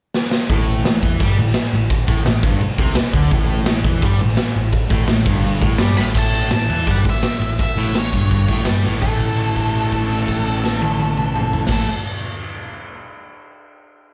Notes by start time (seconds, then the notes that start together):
0.14 snare
0.31 snare
0.50 A1 A2, kick, crash
0.84 A1 A2, snare, crash
1.03 E2 E3, kick
1.20 G2 G3, kick, crash
1.38 A1 A2
1.47 snare
1.54 snare, crash
1.73 A1 A2
1.90 kick, crash
2.07 A1 A2, kick
2.25 A1 A2, snare, crash
2.43 G1 G2, kick
2.61 muted distorted electric guitar stroke, muted picked electric bass stroke, crash
2.78 C2 C3, kick
2.87 snare
2.95 muted distorted electric guitar stroke, muted picked electric bass stroke, snare, crash
3.13 D2 D3, kick
3.31 A1 A2, kick, crash
3.66 A1 A2, snare, crash
3.84 E2 E3, kick
4.02 G2 G3, kick, crash
4.20 A1 A2
4.29 snare
4.37 snare, crash
4.56 A1 A2
4.72 kick, crash
4.90 A1 A2, kick
5.08 A1 A2, snare, crash
5.26 G1 G2, kick
5.44 crash
5.62 A1 A2, kick
5.78 G2 G3, snare, crash
5.97 A1 A2 B5, snare
6.14 A1 A2 A5, kick, crash
6.33 ride
6.51 A1 A2 A5, snare, ride
6.69 E2 E3, ride
6.87 G2 G3, kick, ride
6.91 F#5
7.04 A1 A2, kick, ride
7.10 E5
7.15 snare
7.23 snare, ride
7.40 A1 A2, ride
7.59 E5, kick, ride
7.76 A1 A2, ride
7.95 A1 A2 C#5, snare, ride
8.13 G1 G2, kick, ride
8.31 kick, ride
8.48 A1 A2, kick, ride
8.57 snare
8.65 G2 G3, snare, ride
8.84 A1 A2, snare
9.02 A1 A2 E3 A3 A4, kick, crash
9.20 kick, crash
9.39 crash
9.56 kick, crash
9.75 crash
9.92 kick, crash
10.10 crash
10.28 kick, crash
10.46 crash
10.64 snare
10.82 high tom
11.00 high tom
11.17 mid tom
11.36 mid tom
11.53 floor tom
11.67 A1 A2, kick, snare, crash
11.72 E3 A3 A4